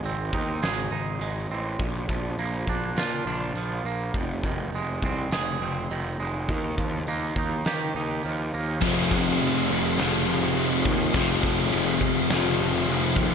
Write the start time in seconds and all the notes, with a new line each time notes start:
Already playing: G#2 G#3
0.03 G#1 C4, open hi-hat
0.32 D#2 D#4, kick
0.62 G#1 G#4, snare, open hi-hat
0.91 G#1 D#4
1.20 G#1 G#3, open hi-hat
1.48 A1 C4
1.79 A#1 A#2, kick, open hi-hat
2.09 A#1 F3, kick
2.38 A#1 A#3, open hi-hat
2.67 A#1 D4, kick
2.95 A#2 F4, snare, open hi-hat
3.26 A#1 D4
3.54 A#1 F3, open hi-hat
3.84 A#1 A#3
4.14 F1 F2, kick, open hi-hat
4.43 F1 D#3, kick
4.72 F1 G#3, open hi-hat
5.02 C2 C4, kick
5.30 F1 G#4, snare, open hi-hat
5.60 F1 C4
5.90 F1 D#3, open hi-hat
6.19 F1 G#3
6.48 D#2 D#3, kick, open hi-hat
6.77 D#2 F3, kick
7.07 D#2 A#3, open hi-hat
7.36 D#2 D#4, kick
7.65 D#3 G4, snare, open hi-hat
7.95 D#2 D#4
8.23 D#2 F3, open hi-hat
8.54 D#2 A#3
8.81 F1 F2 C3 F3 C4 F4 G#4, kick, crash
8.85 G#4 F5 C6
9.11 F1, kick, crash
9.40 F1, crash
9.69 F1, crash
9.98 F1 F2 C3 F3 C4 F4 G#4, snare, crash
10.03 F3
10.27 F1, crash
10.56 F1, crash
10.85 D#2, kick, crash
11.13 F1 F2 C3 F3 C4 F4, kick, crash
11.17 F3 G#4
11.43 F1, kick, crash
11.72 F1, crash
12.01 F1, kick, crash
12.29 F1 F2 C3 F3 C4 F4, snare, crash
12.34 F3 G#4
12.59 F1, crash
12.87 F1, crash
13.16 D#2, kick, crash